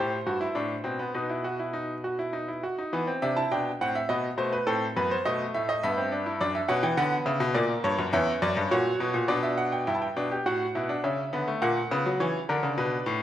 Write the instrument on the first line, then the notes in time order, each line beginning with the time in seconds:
grand piano
Already playing: A2 G4 C5
0.26 G2 F#4
0.41 E4
0.55 A2 D4
0.84 B2 C4
0.99 B3
1.14 B2 D#4 B4
1.29 E4
1.44 F#4
1.60 E4
1.73 D#4
2.04 F#4
2.19 E4
2.33 D#4
2.48 E4
2.63 F#4
2.78 D#4
2.93 E3 B3
3.07 C4
3.22 C3 D4 E5
3.37 E4 A5
3.51 B2 D4 G5
3.81 A2 C4 F#5
3.95 E5
4.09 B2 B3 D#5
4.37 B2 A3 C5
4.53 B4
4.67 A2 C4 A4
4.96 F#2 B3 B4
5.11 C5
5.25 B2 A3 D#5
5.54 A2 E5
5.69 D#5
5.83 G2 B3 E5
5.97 C4
6.12 D4
6.26 E4
6.41 F#2 D4 D5
6.55 E5
6.68 B2 C#4 F#5
6.83 E3 G5
6.97 D3 B3 F#5
7.26 C#3 E5
7.40 B2
7.54 A#2 A#3 D5
7.84 G2 C#5
7.98 F#2
8.13 E2 C#4 E5
8.42 F#2 D5
8.57 G2
8.71 A#2 F#4 C#5
9.00 B2
9.14 A#2
9.28 B2 D4 D5
9.43 E5
9.58 F#5
9.72 G5
9.87 G2 E4 G5
9.94 A5
10.02 G5
10.16 B2 D4
10.32 G4
10.46 A2 F#4 F#5
10.75 B2 E4
10.89 D4
11.04 C#3 C#4 E5
11.33 D3 B3
11.48 A3
11.62 A#2 A#3 F#5
11.91 C#3 B3
12.06 F#3
12.20 E3 C#4 C#5
12.49 D3 D4 A#4
12.63 C#3
12.78 B2 B4
13.06 A2